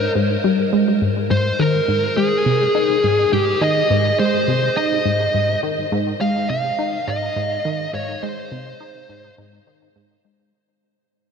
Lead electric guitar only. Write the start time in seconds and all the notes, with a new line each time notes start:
Already playing: A#4
1.31 C5
1.60 A#4
2.17 G#4
3.33 G4
3.62 D#5
4.19 C5
4.77 D#5
6.21 F5
6.50 F5
7.08 D#5
7.94 C#5
8.23 C5